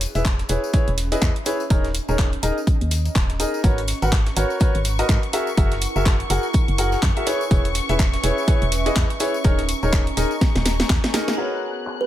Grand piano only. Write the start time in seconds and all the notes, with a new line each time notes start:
0.15 E4 G#4 B4 E5
0.49 E4 G#4 B4 C#5
0.73 E4 G#4 B4 C#5
1.12 E4 G#4 B4 D#5
1.46 E4 G#4 B4 C#5
1.70 D#4 G#4 A#4 C#5
2.09 D#4 G#4 A#4 C#5
2.43 D#4 G#4 A#4 D#5
3.40 D#4 G#4 A#4 D#5
3.64 F#4 A#4 B4 C#5
4.02 F#4 A#4 B4 F#5
4.36 F#4 A#4 B4 C#5
4.61 F#4 A#4 B4 C#5
4.99 F#4 A#4 B4 D#5
5.33 F#4 G#4 A#4 E5
5.57 F#4 G#4 A#4 E5
5.96 F#4 G#4 A#4 E5
6.30 F#4 G#4 A#4 F#5
6.78 F#4 G#4 A#4 F#5
7.17 F#4 G#4 A#4 E5
7.27 E4 G#4 B4 C#5
7.51 E4 G#4 B4 C#5
7.89 E4 G#4 B4 E5
8.23 E4 G#4 B4 C#5
8.48 E4 G#4 B4 C#5
8.86 E4 G#4 B4 D#5
9.20 E4 G#4 B4 C#5
9.44 D#4 G#4 A#4 C#5
9.83 D#4 G#4 A#4 C#5
10.17 D#4 G#4 A#4 D#5
11.14 D#4 G#4 A#4 D#5
11.38 F#4 G#4 A#4 B4 C#5